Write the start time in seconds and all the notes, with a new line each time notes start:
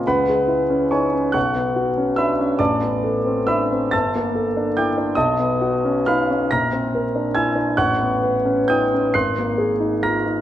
0.07 C#2 B4 F#5 B5
0.29 G#3
0.48 E4
0.70 C#4
0.91 D#4 C#5 G#5 C#6
1.13 C#4
1.32 B1 F#5 C#6 F#6
1.55 B3
1.76 F#4
1.98 C#4
2.16 D4 E5 B5 E6
2.39 C#4
2.59 A1 D5 A5 D6
2.81 B3
3.04 A4
3.25 C4
3.47 D4 E5 B5 E6
3.72 C4
3.91 G1 A5 E6 A6
4.15 A#3
4.35 A4
4.57 D4
4.77 E4 G5 D6 G6
4.98 D4
5.15 B1 D#5 A5 D#6
5.39 B3
5.61 F#4
5.85 C#4
6.06 D#4 F5 B5 F6
6.31 C#4
6.51 A#1 A#5 F6 A#6
6.72 C4
6.95 A#4
7.15 D4
7.35 E4 G#5 E6 G#6
7.55 D4
7.77 A1 F#5 C#6 F#6
8.01 B3
8.23 B4
8.45 C#4
8.68 D#4 G5 D#6 G6
8.94 C#4
9.14 G#1 C6 F#6 C7
9.39 A#3
9.58 G#4
9.80 D#4
10.03 F4 A#5 F6 A#6
10.26 D#4